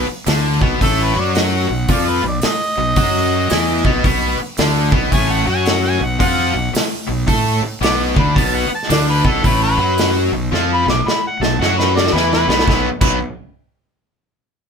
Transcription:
0.08 muted overdriven electric guitar stroke, muted fingered electric bass stroke
0.27 D2 D3 D4, snare, open hi-hat
0.61 B1 B2 B3, kick
0.81 A1 A2 A3 A4, kick, open hi-hat
1.03 B4
1.15 F#2 F#3 F#4 D5
1.35 F#5, snare, open hi-hat
1.68 B1 B2
1.89 F2 F3 F4 D5, kick, open hi-hat
2.10 B4
2.24 B1 B2
2.28 D5
2.42 muted fingered electric bass stroke, muted overdriven electric guitar stroke, snare, open hi-hat
2.46 D#5
2.78 B1 B2
2.96 F#2 F#3 F#4, kick, open hi-hat
3.50 E2 E3 E4, snare, open hi-hat
3.85 B1 B2 B3, kick
4.04 B1 B2 B3, kick, open hi-hat
4.40 muted overdriven electric guitar stroke, muted fingered electric bass stroke
4.57 D2 D3 D4, snare, open hi-hat
4.92 B1 B2 B3, kick
5.11 A1 A2 A3 G#5, kick, open hi-hat
5.32 F#5
5.46 F#2 F#3 F#4
5.51 G#5
5.66 F#5, snare, open hi-hat
5.85 G#5
6.00 B1 B2
6.04 F#5
6.19 F2 F3 F4 F#5, kick, open hi-hat
6.54 B1 B2
6.73 muted overdriven electric guitar stroke, muted fingered electric bass stroke, snare, open hi-hat
7.07 B1 B2
7.27 A2 A3 A4, kick, open hi-hat
7.61 muted fingered electric bass stroke, muted overdriven electric guitar stroke
7.81 B1 B2 B3 D6, snare, open hi-hat
8.16 D2 D3 D4 B5, kick
8.35 B1 B2 B3 A5, kick, open hi-hat
8.56 F#5
8.69 muted overdriven electric guitar stroke, muted fingered electric bass stroke
8.75 A5
8.83 snare
8.89 D2 D3 D4 D5, snare, open hi-hat
9.09 B4
9.24 B1 B2 B3 A4, kick
9.43 A1 A2 A3 B4, kick, open hi-hat
9.63 B4
9.78 F#2 F#3 F#4
9.98 snare, open hi-hat
10.32 B1 B2
10.52 F2 F3 F4, snare
10.74 B5
10.86 B1 B2 D6, snare
11.06 B5, muted fingered electric bass stroke, muted overdriven electric guitar stroke, snare
11.27 F#5
11.40 B1 B2 A5, snare
11.60 F#2 F#3 F#4 F#5, snare
11.78 B4, snare
11.96 D5, snare
12.07 snare
12.13 E2 E3 E4 B4, snare
12.33 B4, snare
12.48 B1 B2 B3, snare
12.59 snare
12.66 B1 B2 F#3 B3 B4, kick, snare
13.01 B1 B2 F#3 B3 B4, kick, crash

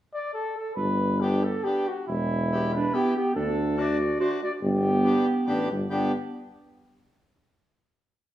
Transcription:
0.14 D5
0.34 A4
0.57 A4
0.75 G1 B4
1.20 B3 D4 G4
1.43 A4
1.64 B3 D4 G4
1.87 F#4
2.07 E1 E4
2.51 B3 E4 G4
2.74 D4 B4
2.92 B3 E4 G4
3.16 B3 G4
3.35 D2 D4 A4
3.76 A3 D4 F#4 D5
4.20 A3 D4 F#4 C5
4.42 F#4 D5
4.62 G1 B3 G4
5.04 B3 D4 G4
5.46 A1 B3 D4 G4
5.71 G1
5.90 G1 B3 D4 G4

